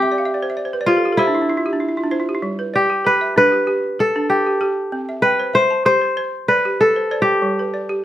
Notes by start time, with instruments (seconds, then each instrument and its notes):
Already playing: balafon C4, kora F4 G4
0.02 balafon E5
0.12 balafon D5
0.18 balafon F5
0.25 balafon E5
0.34 balafon D5
0.43 balafon C5
0.50 balafon E5
0.57 balafon D5
0.65 balafon C5
0.73 balafon B4
0.81 balafon D5
0.86 kora F4, balafon G4 C5
0.97 balafon A4
1.05 balafon G4
1.13 balafon A4
1.17 kora E4, balafon G4 C5
1.27 balafon D4
1.35 balafon E4
1.42 balafon D4
1.50 balafon E4
1.57 balafon F4
1.66 balafon G4
1.73 balafon D4
1.80 balafon E4
1.88 balafon E4
1.97 balafon F4
2.04 balafon D4
2.11 balafon E4 C5
2.20 balafon F4
2.29 balafon G4
2.35 balafon E4
2.42 balafon G3
2.59 balafon B4
2.74 kora G4, balafon D5
2.90 balafon G4
3.05 balafon B4, kora B4
3.21 balafon E5
3.36 balafon D4, kora B4
3.52 balafon G4
3.67 balafon G4
3.99 balafon A4, kora A4
4.16 balafon D4
4.30 kora G4
4.46 balafon G4
4.61 balafon G4 A4
4.92 balafon C4
5.09 balafon E5
5.22 kora B4, balafon G5
5.40 balafon C5
5.54 kora C5, balafon E5
5.71 balafon A5
5.85 balafon G4, kora C5
6.01 balafon C5
6.17 balafon C5
6.48 kora B4, balafon D5
6.65 balafon G4
6.81 kora A4
6.96 balafon C5
7.11 balafon C5 D5
7.22 kora G4
7.42 balafon G3
7.59 balafon B4
7.74 balafon D5
7.89 balafon G4